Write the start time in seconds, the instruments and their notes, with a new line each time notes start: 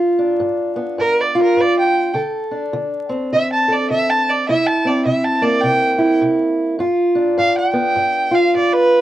Already playing: steel-string acoustic guitar G2 D4 F4
0.18 steel-string acoustic guitar D4
0.40 steel-string acoustic guitar G2
0.76 steel-string acoustic guitar B3
0.98 steel-string acoustic guitar G2, fiddle A#4
1.21 fiddle D5
1.35 steel-string acoustic guitar F4
1.42 fiddle A#4
1.57 steel-string acoustic guitar G2
1.61 fiddle D5
1.79 fiddle G5
2.14 steel-string acoustic guitar D3 A4
2.51 steel-string acoustic guitar D4
2.73 steel-string acoustic guitar D3
3.09 steel-string acoustic guitar C4
3.32 steel-string acoustic guitar D3, fiddle E5
3.52 fiddle A5
3.68 steel-string acoustic guitar A4
3.73 fiddle D5
3.90 steel-string acoustic guitar D3, fiddle E5
4.10 fiddle A5
4.29 fiddle D5
4.48 steel-string acoustic guitar C3 E4, fiddle E5
4.67 fiddle A5
4.85 steel-string acoustic guitar C4, fiddle D5
5.05 steel-string acoustic guitar C3, fiddle E5
5.24 fiddle A5
5.42 steel-string acoustic guitar A#3, fiddle D5
5.62 steel-string acoustic guitar C3, fiddle G5
5.99 steel-string acoustic guitar E4
6.21 steel-string acoustic guitar C3
6.79 steel-string acoustic guitar G2 F4
7.15 steel-string acoustic guitar D4
7.38 steel-string acoustic guitar G2, fiddle F5
7.58 fiddle G5
7.73 steel-string acoustic guitar B3
7.96 steel-string acoustic guitar G2
8.31 steel-string acoustic guitar F4, fiddle F5
8.55 steel-string acoustic guitar G2, fiddle D5
8.73 fiddle B4